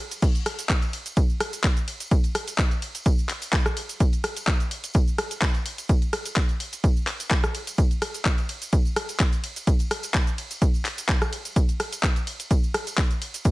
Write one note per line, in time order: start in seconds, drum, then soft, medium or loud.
0.11 closed hi-hat medium
0.11 tambourine medium
0.11 cabasa medium
0.22 kick loud
0.22 closed hi-hat medium
0.22 crash medium
0.22 ride medium
0.22 tambourine medium
0.22 cabasa medium
0.35 closed hi-hat soft
0.35 tambourine soft
0.35 cabasa soft
0.46 cross-stick medium
0.46 open hi-hat loud
0.46 ride medium
0.59 closed hi-hat medium
0.59 tambourine medium
0.59 cabasa medium
0.69 kick loud
0.69 clap loud
0.69 closed hi-hat medium
0.69 cabasa medium
0.81 closed hi-hat soft
0.81 tambourine soft
0.81 cabasa soft
0.93 open hi-hat loud
0.93 ride medium
1.06 closed hi-hat medium
1.06 tambourine medium
1.06 cabasa medium
1.17 kick loud
1.17 closed hi-hat medium
1.17 ride medium
1.17 tambourine medium
1.17 cabasa medium
1.30 tambourine soft
1.30 cabasa soft
1.40 cross-stick medium
1.40 open hi-hat loud
1.40 ride medium
1.53 closed hi-hat medium
1.53 tambourine medium
1.53 cabasa medium
1.64 kick loud
1.64 clap loud
1.64 closed hi-hat medium
1.64 ride medium
1.64 tambourine medium
1.64 cabasa medium
1.77 closed hi-hat soft
1.77 tambourine soft
1.77 cabasa soft
1.88 open hi-hat loud
1.88 ride medium
2.00 closed hi-hat medium
2.00 tambourine medium
2.00 cabasa medium
2.11 kick loud
2.11 closed hi-hat medium
2.11 ride medium
2.11 tambourine medium
2.11 cabasa medium
2.24 closed hi-hat soft
2.24 tambourine soft
2.24 cabasa soft
2.35 cross-stick medium
2.35 open hi-hat loud
2.35 ride medium
2.48 closed hi-hat medium
2.48 tambourine medium
2.48 cabasa medium
2.58 kick loud
2.58 clap loud
2.58 closed hi-hat medium
2.58 ride medium
2.58 tambourine medium
2.58 cabasa medium
2.71 closed hi-hat soft
2.71 tambourine soft
2.71 cabasa soft
2.82 open hi-hat loud
2.82 ride medium
2.95 closed hi-hat medium
2.95 tambourine medium
2.95 cabasa medium
3.06 kick loud
3.06 closed hi-hat medium
3.06 ride medium
3.06 tambourine medium
3.06 cabasa medium
3.18 tambourine soft
3.18 cabasa soft
3.29 clap medium
3.29 open hi-hat loud
3.29 ride medium
3.42 open hi-hat medium
3.42 tambourine medium
3.42 cabasa medium
3.53 kick loud
3.53 clap loud
3.53 closed hi-hat medium
3.53 cabasa medium
3.66 cross-stick medium
3.66 closed hi-hat soft
3.66 tambourine soft
3.66 cabasa soft
3.77 open hi-hat loud
3.77 ride medium
3.89 closed hi-hat medium
3.89 tambourine medium
3.89 cabasa medium
4.00 kick loud
4.00 closed hi-hat medium
4.00 ride medium
4.00 tambourine medium
4.00 cabasa medium
4.13 closed hi-hat soft
4.13 tambourine soft
4.13 cabasa soft
4.24 cross-stick medium
4.24 open hi-hat loud
4.24 ride medium
4.37 closed hi-hat medium
4.37 tambourine medium
4.37 cabasa medium
4.47 kick loud
4.47 clap loud
4.47 closed hi-hat medium
4.47 ride medium
4.47 cabasa medium
4.60 closed hi-hat soft
4.60 tambourine soft
4.60 cabasa soft
4.71 open hi-hat loud
4.71 ride medium
4.84 closed hi-hat medium
4.84 tambourine medium
4.84 cabasa medium
4.94 kick loud
4.94 closed hi-hat medium
4.94 ride medium
4.94 tambourine medium
4.94 cabasa medium
5.08 tambourine soft
5.08 cabasa soft
5.18 cross-stick medium
5.18 open hi-hat loud
5.18 ride medium
5.31 closed hi-hat medium
5.31 tambourine medium
5.31 cabasa medium
5.42 kick loud
5.42 clap loud
5.42 closed hi-hat medium
5.42 ride medium
5.42 tambourine medium
5.42 cabasa medium
5.54 closed hi-hat soft
5.54 tambourine soft
5.54 cabasa soft
5.66 open hi-hat loud
5.66 ride medium
5.78 closed hi-hat medium
5.78 tambourine medium
5.78 cabasa medium
5.89 kick loud
5.89 closed hi-hat medium
5.89 ride medium
5.89 tambourine medium
5.89 cabasa medium
6.02 closed hi-hat soft
6.02 tambourine soft
6.02 cabasa soft
6.13 cross-stick medium
6.13 open hi-hat loud
6.13 ride medium
6.25 closed hi-hat medium
6.25 tambourine medium
6.25 cabasa medium
6.36 kick loud
6.36 clap loud
6.36 closed hi-hat medium
6.36 ride medium
6.36 tambourine medium
6.36 cabasa medium
6.49 closed hi-hat soft
6.49 tambourine soft
6.49 cabasa soft
6.60 open hi-hat loud
6.60 ride medium
6.73 closed hi-hat medium
6.73 tambourine medium
6.73 cabasa medium
6.84 kick loud
6.84 closed hi-hat medium
6.84 ride medium
6.84 tambourine medium
6.84 cabasa medium
6.97 tambourine soft
6.97 cabasa soft
7.07 clap medium
7.07 open hi-hat loud
7.07 ride medium
7.20 open hi-hat medium
7.20 tambourine medium
7.20 cabasa medium
7.31 kick loud
7.31 clap loud
7.31 closed hi-hat medium
7.31 cabasa medium
7.43 cross-stick medium
7.43 closed hi-hat soft
7.43 tambourine soft
7.43 cabasa soft
7.55 open hi-hat loud
7.55 ride medium
7.67 closed hi-hat medium
7.67 tambourine medium
7.67 cabasa medium
7.78 kick loud
7.78 closed hi-hat medium
7.78 ride medium
7.78 tambourine medium
7.78 cabasa medium
7.91 closed hi-hat soft
7.91 tambourine soft
7.91 cabasa soft
8.02 cross-stick medium
8.02 open hi-hat loud
8.02 ride medium
8.14 closed hi-hat medium
8.14 tambourine medium
8.14 cabasa medium
8.25 kick loud
8.25 clap loud
8.25 closed hi-hat medium
8.25 ride medium
8.25 tambourine medium
8.25 cabasa medium
8.38 closed hi-hat soft
8.38 tambourine soft
8.38 cabasa soft
8.49 open hi-hat loud
8.49 ride medium
8.62 closed hi-hat medium
8.62 tambourine medium
8.62 cabasa medium
8.73 kick loud
8.73 closed hi-hat medium
8.73 ride medium
8.73 tambourine medium
8.73 cabasa medium
8.85 tambourine soft
8.85 cabasa soft
8.96 cross-stick medium
8.96 open hi-hat loud
8.96 ride medium
9.09 closed hi-hat soft
9.09 tambourine medium
9.09 cabasa medium
9.20 kick loud
9.20 clap loud
9.20 closed hi-hat medium
9.20 ride medium
9.20 tambourine medium
9.20 cabasa medium
9.32 closed hi-hat soft
9.32 tambourine soft
9.32 cabasa soft
9.44 open hi-hat loud
9.44 ride medium
9.56 closed hi-hat medium
9.56 tambourine medium
9.56 cabasa medium
9.67 kick loud
9.67 closed hi-hat medium
9.67 ride medium
9.67 tambourine medium
9.67 cabasa medium
9.79 closed hi-hat soft
9.79 tambourine soft
9.79 cabasa soft
9.91 cross-stick medium
9.91 open hi-hat loud
9.91 ride medium
10.03 closed hi-hat medium
10.03 tambourine medium
10.03 cabasa medium
10.14 kick loud
10.14 clap loud
10.14 closed hi-hat medium
10.14 cabasa medium
10.27 closed hi-hat soft
10.27 tambourine soft
10.27 cabasa soft
10.38 open hi-hat loud
10.38 ride medium
10.51 closed hi-hat medium
10.51 tambourine medium
10.51 cabasa medium
10.62 kick loud
10.62 closed hi-hat medium
10.62 ride medium
10.62 tambourine medium
10.62 cabasa medium
10.74 tambourine soft
10.74 cabasa soft
10.85 clap medium
10.85 open hi-hat loud
10.85 ride medium
10.98 open hi-hat medium
10.98 tambourine medium
10.98 cabasa medium
11.09 kick loud
11.09 clap loud
11.09 closed hi-hat medium
11.09 ride medium
11.09 tambourine medium
11.09 cabasa medium
11.22 cross-stick medium
11.22 closed hi-hat soft
11.22 tambourine soft
11.22 cabasa soft
11.33 open hi-hat loud
11.33 ride medium
11.45 closed hi-hat medium
11.45 tambourine medium
11.45 cabasa medium
11.56 kick loud
11.56 closed hi-hat medium
11.56 ride medium
11.56 tambourine medium
11.56 cabasa medium
11.69 closed hi-hat soft
11.69 tambourine soft
11.69 cabasa soft
11.80 cross-stick medium
11.80 open hi-hat loud
11.80 ride medium
11.92 closed hi-hat medium
11.92 tambourine medium
11.92 cabasa medium
12.03 kick loud
12.03 clap loud
12.03 closed hi-hat medium
12.03 ride medium
12.03 cabasa medium
12.16 closed hi-hat soft
12.16 tambourine soft
12.16 cabasa soft
12.27 open hi-hat loud
12.27 ride medium
12.40 closed hi-hat medium
12.40 tambourine medium
12.40 cabasa medium
12.51 kick loud
12.51 closed hi-hat medium
12.51 ride medium
12.51 tambourine medium
12.51 cabasa medium
12.64 tambourine soft
12.64 cabasa soft
12.74 cross-stick medium
12.74 open hi-hat loud
12.74 ride medium
12.87 closed hi-hat medium
12.87 tambourine medium
12.87 cabasa medium
12.98 kick loud
12.98 clap loud
12.98 closed hi-hat medium
12.98 tambourine medium
12.98 cabasa medium
13.11 closed hi-hat soft
13.11 tambourine soft
13.11 cabasa soft
13.22 open hi-hat loud
13.22 ride medium
13.34 closed hi-hat medium
13.34 tambourine medium
13.34 cabasa medium
13.45 kick loud
13.45 closed hi-hat medium
13.45 ride medium
13.45 tambourine medium
13.45 cabasa medium